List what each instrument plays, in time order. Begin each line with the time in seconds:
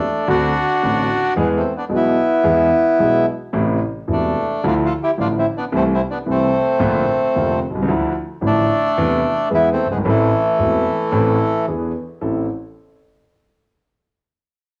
Already playing: bandoneon A3 D4
0.28 grand piano D2 D3 A3 C4 F#4, bandoneon D4 F#4
0.83 grand piano A1 A2 D3 A3 C4 F#4
1.36 grand piano E2 E3 G#3 B3 G#4, bandoneon G#3
1.41 bandoneon B3
1.56 bandoneon A3 C4
1.76 bandoneon B3 D4
1.89 grand piano B1 B2 E3 G#3 B3 G#4
1.94 bandoneon B3 E4
2.44 grand piano E2 E3 G#3 B3 G#4
2.99 grand piano B1 B2 E3 G#3 B3 G#4
3.53 grand piano A1 A2 C3 E3 A3 E4
4.08 grand piano E1 E2 C3 E3 A3 E4
4.12 bandoneon A3 D4
4.63 grand piano D2 D3 F3 A3 E4, bandoneon D4 F4
4.86 bandoneon F4 A4
5.03 bandoneon E4 G4
5.18 grand piano A1 A2 D3 F3 A3 E4, bandoneon D4 F4
5.39 bandoneon C4 E4
5.57 bandoneon B3 D4
5.72 grand piano C2 C3 E3 A3 E4, bandoneon C4
5.76 bandoneon A3
5.94 bandoneon C4 E4
6.11 bandoneon B3 D4
6.26 grand piano C2 C3 E3 A3 E4
6.30 bandoneon A3 C4
6.80 grand piano A#1 A#2 D3 A3 A#3 F4
7.35 grand piano F1 F2 D3 A3 A#3 F4
7.70 grand piano B1
7.75 grand piano C2
7.82 grand piano C#2
7.88 grand piano D2 D3 F3 A3 E4
8.41 grand piano A1 A2 D3 F3 A3 E4
8.47 bandoneon A3 D4
8.98 grand piano E2 C3 E3 A3 E4
9.50 grand piano E2 E3 G#3 B3 G#4
9.54 bandoneon B3 E4
9.73 bandoneon A3 C4
9.85 grand piano F#1
9.91 grand piano G1, bandoneon G#3 B3
9.98 grand piano G#1
10.05 grand piano A1 A2 E3 A3 C4 A4, bandoneon E3 A3
10.58 grand piano E1 E2 E3 A3 C4 A4
11.12 grand piano A1 A2 E3 A3 C4 A4
11.68 grand piano E2 E3 B3 D4 G#4
12.21 grand piano A1 C4 E4 A4